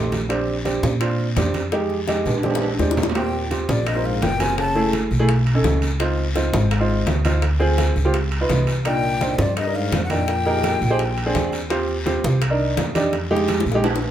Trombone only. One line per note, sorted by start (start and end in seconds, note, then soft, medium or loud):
3.17 3.49 A#2 medium
3.69 3.88 F2 medium
3.87 4.06 G2 medium
4.05 4.24 G#2 medium
4.23 4.42 A#2 medium
4.41 4.58 C3 medium
4.58 4.91 C#3 medium
8.86 9.35 A#2 medium
9.39 9.56 F2 medium
9.58 9.76 G2 medium
9.75 10.03 G#2 medium
10.04 10.12 G#2 medium
10.11 11.53 A#2 medium